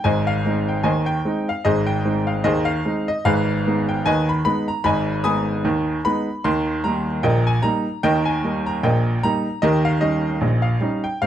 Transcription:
0.04 0.39 G#1 medium
0.04 0.39 G#2 medium
0.04 0.26 C5 medium
0.04 0.26 D#5 medium
0.04 0.27 G#5 medium
0.27 0.68 F5 medium
0.45 0.67 G#3 soft
0.45 0.68 C4 medium
0.45 0.68 D#4 medium
0.68 0.86 G5 medium
0.83 1.18 D#2 medium
0.83 1.19 D#3 medium
0.83 1.06 C5 medium
0.83 1.06 D#5 medium
0.83 1.07 G#5 medium
1.06 1.47 G5 medium
1.25 1.47 G#3 medium
1.25 1.47 C4 medium
1.25 1.48 D#4 medium
1.49 1.66 F5 medium
1.65 1.99 G#1 medium
1.65 1.99 G#2 medium
1.65 1.86 G#4 medium
1.65 1.87 C5 medium
1.65 1.87 D#5 loud
1.87 2.27 G5 loud
2.05 2.27 G#3 soft
2.05 2.27 C4 medium
2.05 2.27 D#4 medium
2.27 2.45 F5 medium
2.44 2.79 D#2 medium
2.44 2.79 D#3 medium
2.44 2.66 G#4 medium
2.44 2.66 C5 medium
2.44 2.67 D#5 loud
2.65 3.06 F5 loud
2.85 3.07 G#3 medium
2.85 3.07 C4 medium
2.85 3.08 D#4 medium
3.08 3.26 D#5 medium
3.25 3.59 G#1 medium
3.25 3.59 G#2 loud
3.25 3.84 G#4 medium
3.25 3.83 B4 medium
3.25 3.87 F5 loud
3.67 3.88 G#3 soft
3.67 3.88 B3 medium
3.67 3.88 D#4 medium
3.89 4.06 G5 medium
4.06 4.39 D#2 medium
4.06 4.39 D#3 medium
4.06 4.27 B4 medium
4.06 4.27 D#5 medium
4.06 4.27 G#5 loud
4.29 4.43 B5 medium
4.45 4.67 G#3 medium
4.45 4.68 B3 medium
4.45 4.68 D#4 medium
4.45 4.67 B5 loud
4.68 4.85 A#5 medium
4.84 5.19 G#1 medium
4.84 5.18 G#2 medium
4.84 5.22 D#5 medium
4.84 5.22 G#5 medium
4.84 5.23 B5 loud
5.24 5.46 G#3 medium
5.24 5.47 B3 medium
5.24 5.47 D#4 medium
5.24 6.00 G#5 medium
5.24 6.00 B5 medium
5.24 6.04 D#6 loud
5.65 5.98 D#2 medium
5.65 5.98 D#3 medium
6.05 6.27 G#3 medium
6.05 6.27 B3 medium
6.05 6.27 D#4 medium
6.05 6.44 B5 loud
6.44 6.78 D#2 medium
6.44 6.78 D#3 loud
6.44 6.84 C6 loud
6.84 7.06 G3 medium
6.84 7.07 A#3 medium
6.84 7.07 D#4 medium
6.84 7.24 A#5 loud
7.23 7.57 A#1 medium
7.23 7.57 A#2 medium
7.23 7.45 A#4 medium
7.23 7.45 D#5 medium
7.23 7.46 G5 loud
7.47 7.64 G#5 medium
7.62 7.85 G3 medium
7.62 7.85 A#3 medium
7.62 7.86 D#4 medium
7.62 8.03 A#5 loud
8.03 8.38 D#2 medium
8.03 8.37 D#3 loud
8.03 8.25 A#4 medium
8.03 8.24 D#5 medium
8.03 8.25 G5 loud
8.25 8.65 G#5 medium
8.44 8.66 G3 medium
8.44 8.66 A#3 medium
8.44 8.66 D#4 medium
8.66 8.84 A#5 medium
8.83 9.17 A#1 medium
8.83 9.17 A#2 medium
8.83 9.21 A#4 medium
8.83 9.21 D#5 medium
8.83 9.23 G5 medium
9.23 9.46 G3 medium
9.23 9.46 A#3 medium
9.23 9.46 D#4 medium
9.23 9.63 A#5 loud
9.62 9.97 D#2 medium
9.62 9.97 D#3 loud
9.62 9.84 G4 medium
9.62 9.84 A#4 medium
9.62 9.85 D#5 loud
9.85 10.03 F5 medium
10.01 10.24 G3 soft
10.01 10.24 C#4 medium
10.01 10.24 D#4 medium
10.01 10.64 D#5 medium
10.41 10.76 A#1 medium
10.41 10.76 A#2 medium
10.62 11.04 F5 medium
10.80 11.03 G3 medium
10.80 11.04 C#4 medium
10.80 11.04 D#4 medium
11.04 11.22 G5 medium
11.22 11.27 G#2 medium
11.22 11.27 C4 medium
11.22 11.27 F5 medium

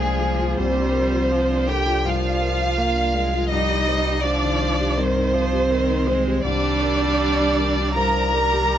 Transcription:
0.00 0.54 C2 soft
0.00 0.55 C2 medium
0.00 0.60 F3 medium
0.00 3.51 F3 medium
0.00 0.57 G#3 medium
0.00 0.54 A#3 medium
0.00 0.02 D4 soft
0.00 0.32 D4 soft
0.00 0.39 F4 soft
0.00 0.21 G#4 soft
0.00 0.59 G#4 medium
0.00 0.58 G#5 medium
0.21 0.51 G#4 soft
0.39 0.58 F4 soft
0.57 2.00 C2 medium
0.57 6.40 C2 medium
0.57 1.32 G3 medium
0.57 1.70 C4 medium
0.57 3.47 D4 medium
0.57 3.51 A#4 medium
0.57 1.67 C5 medium
0.75 1.05 D4 soft
0.93 1.23 A#4 soft
1.12 1.72 F4 soft
1.31 1.69 F3 medium
1.49 1.79 D4 soft
1.68 2.07 D3 medium
1.68 2.07 G4 medium
1.68 1.98 A#4 soft
1.68 2.06 G5 medium
1.86 2.16 F4 soft
2.05 3.47 C2 soft
2.05 2.79 F3 medium
2.05 3.51 F4 medium
2.05 3.52 F5 medium
2.24 2.53 D4 soft
2.42 2.71 A#4 soft
2.60 3.18 F4 soft
2.77 3.16 A#3 medium
2.96 3.25 D4 soft
3.15 3.50 G#3 medium
3.15 3.44 A#4 medium
3.33 3.51 F4 soft
3.49 4.94 C2 medium
3.49 8.78 D#3 medium
3.49 4.25 G3 medium
3.49 6.43 C4 medium
3.49 4.25 D#4 medium
3.49 6.43 C5 medium
3.49 4.22 D#5 medium
3.70 3.98 D#4 soft
3.88 4.17 C5 soft
4.07 4.65 G4 medium
4.23 4.98 F3 medium
4.23 4.99 D4 medium
4.23 4.98 D5 medium
4.43 4.72 D#3 soft
4.62 4.91 C5 soft
4.80 5.09 G4 soft
4.97 5.27 G2 soft
4.97 5.34 D#3 medium
4.97 6.47 C4 medium
4.97 6.44 C5 medium
5.16 5.45 D#4 soft
5.33 5.72 F3 medium
5.33 5.64 C5 medium
5.53 6.11 G4 soft
5.70 6.08 D#3 medium
5.91 6.19 D#4 soft
6.07 6.44 G#3 medium
6.07 6.37 C5 soft
6.28 6.45 G4 medium
6.43 8.78 C2 medium
6.43 7.92 C2 medium
6.43 7.96 G3 medium
6.43 8.78 D4 medium
6.43 7.96 D4 loud
6.43 8.78 A#4 medium
6.43 7.92 D5 medium
6.63 6.92 D4 soft
6.82 7.11 A#4 soft
7.02 7.62 G4 medium
7.39 7.69 D4 soft
7.59 7.89 A#4 soft
7.78 8.08 G4 medium
7.95 8.78 C2 soft
7.95 8.35 F3 medium
7.95 8.78 A#4 loud
7.95 8.78 A#5 medium
8.16 8.45 D4 soft
8.34 8.78 G3 medium
8.34 8.64 A#4 medium
8.52 8.78 G4 soft

